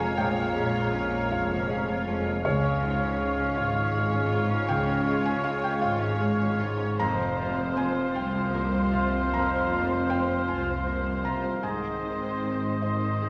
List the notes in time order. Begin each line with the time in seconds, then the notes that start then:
Already playing: A#1 F2 A#2 G#3 C#4 F4 G#4 C#5 F5 A#5
0.00 A#3 G#5
0.17 A#1 A#2 G#3 G5
0.36 A#3
0.55 G#3 C#4
0.73 F4
0.94 C#4 F4
1.12 A#3
1.31 F1 F2 G#3 F4 C#5 F5
1.50 A#3
1.69 G#3 C#4 G#4
1.89 F4
2.07 F2 C#4 F4
2.25 A#3
2.43 C#2 C#3 G#3 F4 C#5 F5 C#6
2.63 C#4
2.81 G#2 G#3 F4
3.01 C#4
3.19 G#3 C#4 F4
3.37 C#4
3.57 G#1 G#2 F4 C#5 F5
3.75 C#4
3.93 G#3 G#4
4.11 C#4
4.29 G#2 F4
4.48 C#4
4.67 C#2 C#3 G#3 G5
4.86 C#4
5.05 G#3 F4
5.23 C#4 G#5
5.42 G#3 C#4 F4 F5
5.61 C#4 G5
5.80 G#1 G#2 F4 C#5 F5
5.99 C#4
6.19 G#3 G#4
6.39 C#4
6.59 G#2 F4
6.80 C#4
6.99 F1 F2 F3 A#3 C4 F4 C5 F5 A#5 C6
7.19 C4
7.37 C3 A#3 F4
7.57 C4
7.76 A#3 C4 F4 G#5
7.94 C4
8.13 C2 F4 C5 G5
8.32 C4
8.53 A#3 A#4
8.71 C4
8.92 C3 F4 F5
9.12 C4
9.32 F1 F2 A#3 A#5
9.51 C4
9.71 A#3 F4
9.91 C4
10.10 A#3 C4 F4 G5
10.29 C4
10.48 C2 F4 C5 G#5
10.69 C4
10.87 A#3 A#4
11.06 C4
11.24 C3 F4 A#5
11.45 C4
11.62 G#1 G#2 D#3 C4 D#4 C5 D#5 G#5 C6
12.03 D#3 G#3
12.42 C4
12.82 D#3 C4 C5 D#5
13.21 G#3 G#4